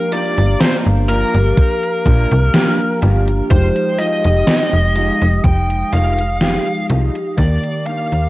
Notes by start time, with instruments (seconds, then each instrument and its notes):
Already playing: fm electric piano F3 A#3 D4 G4, ambient pad G4 F5 A#5, lead electric guitar A#4
0.12 clean electric guitar A#3 D4 F4 G4, lead electric guitar D5, closed hi-hat
0.38 fm bass G1, closed hi-hat
0.61 lead electric guitar C5, snare, closed hi-hat
0.86 fm bass G1
1.08 clean electric guitar A#3 D4 F4 G4, lead electric guitar A#4, closed hi-hat
1.35 fm bass G1, closed hi-hat
1.57 kick, closed hi-hat
1.83 closed hi-hat
2.05 fm bass A#1, clean electric guitar A#3 D4 F4 A#4, kick, closed hi-hat
2.31 fm bass C2, closed hi-hat
2.54 fm electric piano F3 A#3 D4 G4, snare, closed hi-hat
3.02 fm bass G1, clean electric guitar A#3 D4 F4 G4, closed hi-hat
3.28 closed hi-hat
3.50 fm bass F1, fm electric piano F3 G#3 D#4 G4, ambient pad G#3 G5 D#6, lead electric guitar C5, kick, closed hi-hat
3.76 closed hi-hat
3.99 clean electric guitar G#3 D#4 F4 G4, lead electric guitar D#5, closed hi-hat
4.24 fm bass F1, closed hi-hat
4.47 snare, closed hi-hat
4.73 fm bass F1
4.95 clean electric guitar G#3 D#4 F4 G4, closed hi-hat
5.22 fm bass F1, closed hi-hat
5.44 fm bass F1, ambient pad F5, lead electric guitar G5, kick, closed hi-hat
5.70 closed hi-hat
5.93 fm bass F1, clean electric guitar G#3 D#4 F4 A#4, lead electric guitar F5, closed hi-hat
6.18 closed hi-hat
6.41 fm electric piano F3 G#3 D#4 G4, snare, closed hi-hat
6.89 fm bass C2, clean electric guitar G#3 D#4 F4 G4, closed hi-hat
7.15 closed hi-hat
7.37 fm bass D#2, fm electric piano D#3 A#3 G4 A#4, ambient pad G4 D6, lead electric guitar D5, kick, closed hi-hat
7.64 closed hi-hat
7.86 clean electric guitar A#3 D4 D#4 G4, lead electric guitar F5, closed hi-hat
8.12 fm bass D#2, closed hi-hat